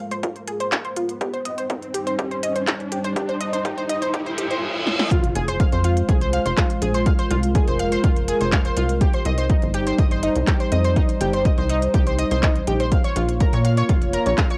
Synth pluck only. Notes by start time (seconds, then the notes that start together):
0.12 C5
0.23 F4
0.48 G#4
0.60 C5
0.72 F5
0.85 C5
0.97 F4
1.21 G4
1.34 C5
1.45 D#5
1.58 C5
1.70 D#4
1.94 G4
2.07 C5
2.19 G4
2.31 C5
2.43 D#5
2.56 C5
2.67 D#4
2.92 G4
3.04 C5
3.16 G4
3.29 C5
3.41 D#5
3.53 C5
3.65 G4
3.78 C5
3.89 D#5
4.02 C5
4.14 G4
4.26 C5
4.38 G4
4.51 C5
5.11 F4 F5
5.36 G#4 G#5
5.48 C5 C6
5.60 F5 F6
5.73 C5 C6
5.85 F4 F5
6.09 G#4 G#5
6.21 C5 C6
6.33 F5 F6
6.46 C5 C6
6.58 F4 F5
6.82 G#4 G#5
6.94 C5 C6
7.06 F5 F6
7.19 C5 C6
7.31 F4 F5
7.55 G#4 G#5
7.68 C5 C6
7.80 F5 F6
7.92 C5 C6
8.04 F4 F5
8.28 G#4 G#5
8.41 C5 C6
8.53 F5 F6
8.65 C5 C6
8.77 F4 F5
9.02 G4 G5
9.14 C5 C6
9.26 D#5 D#6
9.38 C5 C6
9.50 D#4 D#5
9.75 G4 G5
9.87 C5 C6
9.99 D#5 D#6
10.12 C5 C6
10.23 D#4 D#5
10.48 G4 G5
10.60 C5 C6
10.72 D#5 D#6
10.85 C5 C6
10.97 D#4 D#5
11.21 G4 G5
11.34 C5 C6
11.45 D#5 D#6
11.58 C5 C6
11.70 D#4 D#5
11.94 G4 G5
12.07 C5 C6
12.19 D#5 D#6
12.31 C5 C6
12.43 D#4 D#5
12.67 G4 G5
12.80 C5 C6
12.92 F5 F6
13.04 C#5 C#6
13.16 F4 F5
13.40 A#4 A#5
13.53 C#5 C#6
13.65 F5 F6
13.77 C#5 C#6
13.89 F4 F5
14.14 A#4 A#5
14.26 C#5 C#6
14.38 F5 F6
14.51 C#5 C#6